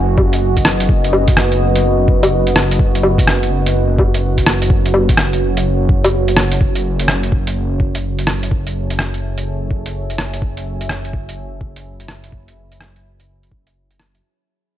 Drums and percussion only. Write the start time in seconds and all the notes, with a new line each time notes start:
0.18 kick, low woodblock
0.33 closed hi-hat
0.57 kick, closed hi-hat
0.65 cross-stick
0.80 closed hi-hat
0.89 kick
1.04 closed hi-hat
1.13 low woodblock
1.28 kick, closed hi-hat
1.37 cross-stick
1.52 closed hi-hat
1.76 closed hi-hat
2.08 kick
2.23 closed hi-hat, low woodblock
2.47 closed hi-hat
2.56 cross-stick
2.71 closed hi-hat
2.79 kick
2.95 closed hi-hat
3.03 low woodblock
3.18 kick, closed hi-hat
3.27 cross-stick
3.43 closed hi-hat
3.66 closed hi-hat
3.99 kick, low woodblock
4.14 closed hi-hat
4.38 kick, closed hi-hat
4.46 cross-stick
4.62 closed hi-hat
4.70 kick
4.86 closed hi-hat
4.94 low woodblock
5.09 kick, closed hi-hat
5.17 cross-stick
5.33 closed hi-hat
5.57 closed hi-hat
5.89 kick
6.04 closed hi-hat, low woodblock
6.28 closed hi-hat
6.37 cross-stick
6.52 closed hi-hat
6.61 kick
6.75 closed hi-hat
7.00 closed hi-hat
7.08 cross-stick
7.23 closed hi-hat
7.32 kick
7.47 closed hi-hat
7.80 kick
7.95 closed hi-hat
8.19 closed hi-hat
8.27 cross-stick
8.43 closed hi-hat
8.51 kick
8.67 closed hi-hat
8.90 closed hi-hat
8.99 cross-stick
9.14 closed hi-hat
9.38 closed hi-hat
9.71 kick
9.86 closed hi-hat
10.10 closed hi-hat
10.18 cross-stick
10.34 closed hi-hat
10.42 kick
10.57 closed hi-hat
10.81 closed hi-hat
10.89 cross-stick
11.05 closed hi-hat
11.13 kick
11.29 closed hi-hat
11.61 kick
11.76 closed hi-hat
12.00 closed hi-hat
12.08 cross-stick
12.24 closed hi-hat
12.32 kick
12.48 closed hi-hat
12.72 closed hi-hat
12.81 cross-stick
12.96 closed hi-hat
13.20 closed hi-hat
13.43 closed hi-hat
13.52 kick
13.67 closed hi-hat
13.91 closed hi-hat
14.00 cross-stick
14.15 closed hi-hat